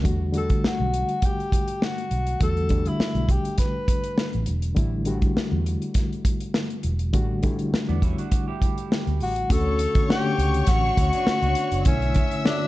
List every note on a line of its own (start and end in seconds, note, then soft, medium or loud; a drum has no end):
0.03 0.51 E2 medium
0.03 0.24 D3 medium
0.03 0.24 G3 medium
0.03 0.24 A3 medium
0.03 0.25 F#4 medium
0.03 kick loud
0.03 closed hi-hat medium
0.32 1.10 D3 medium
0.32 1.11 G3 medium
0.32 1.11 A3 medium
0.32 1.12 F#4 medium
0.32 closed hi-hat medium
0.38 0.68 A4 medium
0.50 kick medium
0.50 closed hi-hat soft
0.64 1.27 F#4 medium
0.64 muted fingered electric bass stroke soft
0.64 snare loud
0.80 1.03 B1 medium
0.94 closed hi-hat medium
1.09 closed hi-hat soft
1.22 1.86 G4 medium
1.22 kick medium
1.22 closed hi-hat medium
1.40 closed hi-hat soft
1.52 kick medium
1.52 closed hi-hat medium
1.68 closed hi-hat medium
1.82 2.42 F#4 medium
1.82 snare loud
1.98 closed hi-hat soft
2.11 2.34 B1 medium
2.11 closed hi-hat medium
2.27 closed hi-hat medium
2.40 2.87 E2 loud
2.40 2.60 D3 medium
2.40 2.60 G3 medium
2.40 2.61 A3 medium
2.40 2.62 F#4 medium
2.40 2.89 A4 loud
2.40 kick loud
2.40 closed hi-hat medium
2.57 closed hi-hat soft
2.69 3.47 D3 medium
2.69 3.47 G3 medium
2.69 3.48 A3 medium
2.69 3.48 D4 medium
2.69 kick medium
2.69 closed hi-hat medium
2.85 3.32 E4 medium
2.85 closed hi-hat soft
2.99 muted fingered electric bass stroke soft
2.99 snare medium
3.15 3.38 B1 medium
3.15 closed hi-hat soft
3.29 3.58 G4 medium
3.29 kick medium
3.29 closed hi-hat medium
3.45 closed hi-hat soft
3.58 4.44 B4 medium
3.58 kick medium
3.58 snare soft
3.58 closed hi-hat medium
3.88 kick medium
3.88 closed hi-hat medium
4.04 closed hi-hat medium
4.18 snare loud
4.33 4.45 A1 medium
4.33 closed hi-hat soft
4.46 4.71 E1 medium
4.46 closed hi-hat medium
4.62 closed hi-hat medium
4.75 5.23 A1 medium
4.75 4.96 D3 medium
4.75 4.96 G3 medium
4.75 4.97 A3 medium
4.75 4.97 E4 medium
4.75 kick loud
4.75 closed hi-hat medium
5.05 5.84 D3 medium
5.05 5.84 G3 medium
5.05 5.84 A3 medium
5.05 5.84 F#4 medium
5.05 closed hi-hat medium
5.22 kick medium
5.22 closed hi-hat soft
5.37 muted fingered electric bass stroke soft
5.37 snare loud
5.52 5.75 E2 medium
5.66 closed hi-hat medium
5.82 closed hi-hat soft
5.94 kick medium
5.94 snare soft
5.94 closed hi-hat medium
6.12 closed hi-hat soft
6.25 kick medium
6.25 closed hi-hat medium
6.40 closed hi-hat medium
6.54 snare loud
6.70 closed hi-hat soft
6.83 7.14 E1 medium
6.83 closed hi-hat medium
6.99 closed hi-hat soft
7.13 7.59 A1 medium
7.13 7.33 D3 medium
7.13 7.34 G3 medium
7.13 7.34 A3 medium
7.13 7.34 F#4 medium
7.13 kick loud
7.13 closed hi-hat medium
7.43 8.20 D3 medium
7.43 8.21 G3 medium
7.43 8.21 A3 medium
7.43 8.21 E4 medium
7.43 kick medium
7.43 closed hi-hat medium
7.59 closed hi-hat soft
7.73 muted fingered electric bass stroke soft
7.73 snare loud
7.89 8.12 E2 medium
7.89 8.02 B3 soft
7.89 8.02 D4 medium
7.89 closed hi-hat soft
8.02 8.18 C#4 medium
8.02 8.18 E4 medium
8.02 kick medium
8.02 closed hi-hat medium
8.18 8.47 D4 medium
8.18 8.47 F#4 medium
8.18 closed hi-hat soft
8.32 kick medium
8.32 closed hi-hat medium
8.48 9.33 E4 medium
8.48 9.32 G4 medium
8.62 kick medium
8.62 closed hi-hat medium
8.78 closed hi-hat medium
8.92 snare loud
9.07 9.21 D2 medium
9.07 closed hi-hat soft
9.20 9.44 A1 medium
9.20 9.53 F#4 loud
9.20 open hi-hat medium
9.36 closed hi-hat medium
9.50 9.85 D2 loud
9.50 9.89 D3 medium
9.50 9.89 A3 medium
9.50 9.89 C#4 medium
9.50 9.90 F#4 medium
9.50 10.10 A4 loud
9.50 11.83 C#5 medium
9.50 11.83 C#6 loud
9.50 kick loud
9.50 closed hi-hat medium
9.79 closed hi-hat medium
9.95 kick medium
9.95 closed hi-hat medium
10.09 10.86 D3 medium
10.09 10.86 A3 medium
10.09 10.86 C#4 medium
10.09 10.71 G4 loud
10.09 10.87 F#5 medium
10.09 snare loud
10.38 10.61 C#2 medium
10.38 closed hi-hat medium
10.54 closed hi-hat medium
10.67 10.91 A1 medium
10.67 10.82 F#4 soft
10.67 11.87 F#4 loud
10.67 10.83 A4 medium
10.67 kick medium
10.67 snare soft
10.67 closed hi-hat loud
10.84 10.97 D4 medium
10.84 10.97 F#4 medium
10.97 11.10 D2 medium
10.97 11.13 C#4 medium
10.97 11.13 E4 medium
10.97 kick medium
10.97 closed hi-hat medium
11.13 11.27 B3 medium
11.13 11.26 D4 medium
11.13 closed hi-hat medium
11.27 11.42 A3 medium
11.27 11.42 C#4 medium
11.27 muted fingered electric bass stroke soft
11.27 snare loud
11.42 11.53 C#2 medium
11.42 11.84 B3 medium
11.42 11.84 D4 medium
11.42 closed hi-hat soft
11.55 closed hi-hat medium
11.71 11.83 F#1 medium
11.71 closed hi-hat medium
11.85 12.21 B1 loud
11.85 12.25 D3 medium
11.85 12.25 A3 medium
11.85 12.25 C#4 medium
11.85 12.42 C#4 medium
11.85 12.25 E4 medium
11.85 12.68 E5 medium
11.85 12.68 E6 medium
11.85 kick loud
11.85 closed hi-hat loud
12.02 closed hi-hat soft
12.15 kick medium
12.15 closed hi-hat medium
12.31 closed hi-hat soft
12.45 12.68 D3 medium
12.45 12.68 A3 medium
12.45 12.68 D4 medium
12.45 12.68 F#4 medium
12.45 12.68 C#5 medium
12.45 snare loud